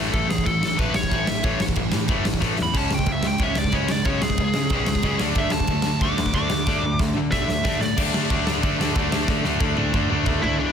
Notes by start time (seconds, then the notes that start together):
Already playing: A2 A3
0.00 E3
0.11 A1 A2 E3 A3 A4, kick, crash
0.28 A1 A2 E3 G#4, snare
0.38 kick
0.44 A1 A2 E3 A4, kick, crash
0.61 A2 E3, snare
0.76 A1 A2 E3 A3 B4, kick, crash
0.93 A1 A2 E3 C#5, snare
1.03 kick
1.09 A1 A2 E3 A3, kick, crash
1.26 A1 A2 E3 E5, snare
1.43 A1 A2 E3 A3 C#5, kick, crash
1.60 A1 A2 E3, snare
1.68 kick
1.76 A1 A2 E3, kick, crash
1.92 A2 E3, snare
2.08 F#1 A2 E3 A3, kick, crash
2.24 A1 A2 E3, snare
2.34 kick
2.40 A1 A2 E3 A3, kick, snare
2.58 E2 A2 E3, snare
2.63 B5
2.73 C#2 C#3 G#3 C#4, kick, splash, crash
2.78 A5
2.90 C#2 C#3 G#3, snare
2.95 G5
2.99 kick
3.06 C#2 C#3 G#3, kick, crash
3.12 E5
3.23 C#3 G#3, snare
3.28 G5
3.38 C#2 C#3 G#3 C#4, kick, crash
3.43 E5
3.55 C#2 C#3 G#3 D5, snare
3.64 kick
3.72 C#2 C#3 G#3 C#4 C#5, kick, crash
3.88 C#2 C#3 G#3 D5, snare
4.05 C#2 C#3 G#3 C#4 C#5, kick, crash
4.21 C#2 C#3 G#3 G#4, snare
4.30 kick
4.38 C#2 C#3 G#3, kick, crash
4.54 C#3 G#3, snare
4.70 B1 C#3 G#3, kick, crash
4.74 C#4
4.86 C#2 C#3 G#3, snare
4.95 kick
5.03 C#2 C#3 G#3 C#4, kick, crash
5.19 D2 D3 A3 D4, snare
5.35 D2 D3 A3 D4 E5, kick, crash
5.50 D2 D3 A3 A5, snare
5.60 kick
5.67 D2 D3 A3, kick, crash
5.82 snare
5.87 D3 A3
6.01 D2 D3 A3 D4 D6, kick, crash
6.18 D2 D3 A3, snare
6.26 kick
6.33 D2 D3 A3 D4 D6, kick, crash
6.50 D2 D3 A3, snare
6.67 D2 D3 A3 D4, kick, snare
6.82 D2 D3 A3
6.99 D2 D3 A3, kick, snare
7.15 D3 A3
7.31 B1 D3 A3 D4 E5, kick, snare
7.47 D2 D3 A3, snare
7.63 D2 D3 A3 D4, kick, snare
7.79 A2 D3 A3 D5, snare
7.97 D2 D3 A3 D4, kick, crash
8.13 D2 D3 A3 D4, snare
8.30 D2 D3 A3 D4, kick, crash
8.45 D3 A3 D4, snare
8.62 D2 D3 A3 D4, kick, crash
8.79 D2 D3 A3 D4, snare
8.95 D2 D3 A3 D4, kick, crash
9.12 D2 D3 A3 D4, snare
9.28 D2 D3 A3 D4, kick, snare
9.44 D2 D3 A3 D4, snare
9.60 D2 D3 A3 D4, kick
9.77 D3 A3 D4, high tom
9.93 D2 D3 A3 D4, kick, mid tom
10.09 D2 D3 A3 D4
10.25 D2 D3 A3 D4, kick, floor tom
10.41 D2 D3 A3 D4 E4 E5, floor tom
10.57 E2 B2 E3 D4 D5